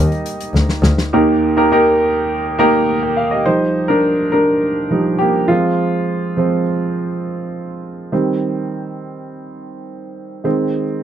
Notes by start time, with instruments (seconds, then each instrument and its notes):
Already playing: upright piano G3 A#3 D#4 G4 D#5
0.12 closed hi-hat
0.26 closed hi-hat
0.40 closed hi-hat
0.54 double bass D2, snare
0.69 snare
0.83 double bass D2, snare
0.98 snare
1.13 upright piano D#2 D#3 A#3 D#4 G4 A#4
1.57 upright piano A#3 D#4 G4 A#4
1.72 upright piano A#3 D#4 G4 A#4
2.59 upright piano A#3 D#4 G4 A#4
3.03 upright piano A#4 G5
3.17 upright piano F5
3.31 upright piano G4 D#5
3.46 upright piano F3 G3 D#4 C5
3.88 upright piano D4 A#4
4.32 upright piano D4 A#4
4.90 upright piano F3 G3 D#4
5.19 upright piano A#3 G4
5.48 upright piano F3 G#3 C4 F4
6.37 upright piano F3 G#3 C4
8.12 upright piano D#3 G3 C4
10.44 upright piano D#3 G#3 C4